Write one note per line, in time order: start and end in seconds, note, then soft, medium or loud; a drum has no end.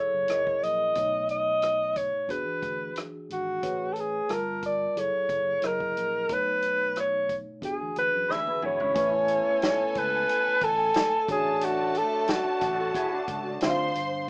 0.00 0.28 F#3 medium
0.00 0.28 E4 soft
0.00 0.29 G#4 medium
0.00 0.30 A4 medium
0.00 0.65 C#5 medium
0.14 0.27 F#1 medium
0.28 0.58 F#1 medium
0.28 0.96 F#3 medium
0.28 0.96 E4 soft
0.28 0.96 G#4 medium
0.28 0.96 A#4 soft
0.28 0.97 D#5 medium
0.28 cross-stick loud
0.28 closed hi-hat medium
0.47 kick medium
0.63 0.91 A#1 medium
0.63 1.30 D#5 medium
0.63 closed hi-hat medium
0.95 2.10 B1 medium
0.95 2.26 B2 medium
0.95 2.27 A3 medium
0.95 2.27 D#4 medium
0.95 2.28 C#5 medium
0.95 kick medium
0.95 closed hi-hat medium
1.29 1.98 D#5 medium
1.29 closed hi-hat medium
1.62 cross-stick medium
1.62 closed hi-hat medium
1.96 2.32 C#5 medium
1.96 kick medium
1.96 closed hi-hat medium
2.27 2.45 E2 medium
2.27 3.59 E3 medium
2.27 3.60 D4 medium
2.27 3.60 F#4 medium
2.27 3.61 G#4 medium
2.27 2.97 B4 medium
2.27 kick medium
2.27 closed hi-hat medium
2.49 muted fingered electric bass stroke soft
2.62 2.91 D2 medium
2.62 kick medium
2.62 closed hi-hat medium
2.96 cross-stick loud
2.96 closed hi-hat medium
3.30 3.58 G#1 medium
3.30 3.95 F#4 medium
3.30 closed hi-hat medium
3.62 4.20 A1 medium
3.62 4.29 A3 medium
3.62 4.29 G#4 soft
3.62 4.30 B4 soft
3.62 4.30 C#5 medium
3.62 kick medium
3.62 closed hi-hat medium
3.93 4.01 A4 medium
3.93 closed hi-hat medium
4.00 4.35 G#4 medium
4.29 4.87 G1 medium
4.29 4.96 G3 medium
4.29 4.96 F4 medium
4.29 4.97 A#4 medium
4.29 4.96 A5 medium
4.29 cross-stick medium
4.29 closed hi-hat medium
4.33 4.65 A#4 medium
4.62 5.01 D5 medium
4.62 kick medium
4.62 closed hi-hat medium
4.96 5.12 F#1 medium
4.96 5.61 F#3 medium
4.96 5.61 E4 medium
4.96 5.62 G#4 medium
4.96 5.64 A4 medium
4.96 5.68 C#5 medium
4.96 closed hi-hat medium
5.29 5.58 F#1 medium
5.29 kick medium
5.29 closed hi-hat medium
5.62 5.92 F#1 medium
5.62 6.29 F#3 medium
5.62 6.29 E4 soft
5.62 6.29 G#4 soft
5.62 6.30 A#4 medium
5.62 6.30 D#5 medium
5.62 cross-stick loud
5.62 closed hi-hat medium
5.66 6.34 A#4 medium
5.80 kick medium
5.97 6.25 A#1 medium
5.97 closed hi-hat medium
6.29 7.44 B1 medium
6.29 7.60 B2 medium
6.29 7.60 A3 medium
6.29 7.61 D#4 medium
6.29 6.98 B4 medium
6.29 7.61 C#5 medium
6.29 kick loud
6.29 closed hi-hat medium
6.62 closed hi-hat medium
6.96 cross-stick medium
6.96 closed hi-hat medium
7.00 7.36 C#5 medium
7.29 kick medium
7.29 closed hi-hat medium
7.61 7.82 E2 medium
7.61 8.92 E3 medium
7.61 8.93 D4 medium
7.61 8.93 F#4 medium
7.61 8.94 G#4 medium
7.61 7.95 G#4 medium
7.61 kick medium
7.61 closed hi-hat medium
7.82 7.94 D2 medium
7.96 8.12 D2 medium
7.96 8.33 B4 medium
7.96 closed hi-hat medium
8.15 8.27 F#2 medium
8.28 8.45 D2 medium
8.28 8.61 G#4 medium
8.28 8.60 B4 medium
8.28 8.64 E5 medium
8.28 snare soft
8.47 high tom soft
8.62 8.78 D2 medium
8.62 8.79 E4 medium
8.62 8.79 G#4 medium
8.62 9.91 C#5 medium
8.62 mid tom medium
8.80 8.94 C#2 medium
8.80 9.12 C#4 medium
8.80 9.12 E4 medium
8.80 floor tom medium
8.94 9.40 A1 loud
8.94 11.24 A3 medium
8.94 10.91 B3 medium
8.94 10.91 C#4 medium
8.94 10.91 E4 medium
8.94 11.25 A4 medium
8.94 11.25 B4 medium
8.94 11.25 C#5 medium
8.94 11.24 G#5 medium
8.94 11.25 G#5 medium
8.94 kick loud
8.94 closed hi-hat medium
9.28 closed hi-hat medium
9.62 snare loud
9.62 closed hi-hat medium
9.91 10.00 C#5 medium
9.91 closed hi-hat medium
9.96 10.24 C#2 medium
9.96 10.66 B4 medium
9.96 kick medium
10.29 closed hi-hat medium
10.48 muted fingered electric bass stroke soft
10.61 10.90 A1 medium
10.61 11.30 A4 loud
10.61 kick medium
10.61 closed hi-hat medium
10.94 snare loud
10.94 closed hi-hat loud
11.28 12.01 A1 loud
11.28 13.24 F#3 medium
11.28 13.24 A3 medium
11.28 13.59 A3 medium
11.28 13.58 D4 medium
11.28 13.24 D4 medium
11.28 13.58 F#4 medium
11.28 11.66 G#4 medium
11.28 13.59 C#5 medium
11.28 13.59 A5 medium
11.28 kick loud
11.28 closed hi-hat medium
11.61 11.99 F#4 medium
11.61 closed hi-hat loud
11.95 12.32 A4 medium
11.95 closed hi-hat medium
12.28 13.63 F#4 medium
12.28 snare loud
12.28 closed hi-hat medium
12.61 12.90 A1 medium
12.61 12.79 D4 medium
12.61 12.79 F#4 medium
12.61 kick medium
12.61 closed hi-hat medium
12.79 12.95 F#4 medium
12.79 12.94 A4 medium
12.94 13.12 E4 medium
12.94 13.12 G#4 medium
12.94 kick medium
12.94 closed hi-hat medium
13.13 13.60 D4 medium
13.13 13.59 F#4 medium
13.28 13.57 C#2 medium
13.28 kick medium
13.28 closed hi-hat medium
13.61 13.90 D2 loud
13.61 14.28 D3 medium
13.61 13.95 C4 medium
13.61 13.94 D4 medium
13.61 14.29 D4 medium
13.61 13.94 F4 medium
13.61 14.28 C5 medium
13.61 14.29 C5 medium
13.61 13.70 E5 medium
13.61 14.28 C6 medium
13.61 snare loud
13.61 closed hi-hat medium
13.70 14.29 F5 medium
13.95 14.24 G1 medium
13.95 closed hi-hat medium